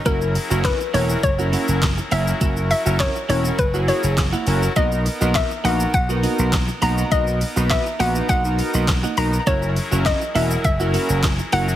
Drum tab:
HH |x-o-x-o-x-o-x-o-|x-o-x-o-x-o-x-o-|x-o-x-o-x-o-x-o-|x-o-x-o-x-o-x-o-|
SH |xxxxxxxxxxxxxxxx|xxxxxxxxxxxxxxxx|xxxxxxxxxxxxxxxx|xxxxxxxxxxxxxxxx|
CP |----x-------x---|----x-------x---|----x-------x---|----x-------x---|
SD |----o-------o---|----o-------o---|----o-------o---|----o-------o---|
BD |o---o---o---o---|o---o---o---o---|o---o---o---o---|o---o---o---o---|

HH |x-o-x-o-x-o-x-o-|
SH |xxxxxxxxxxxxxxxx|
CP |----x-------x---|
SD |----o-------o---|
BD |o---o---o---o---|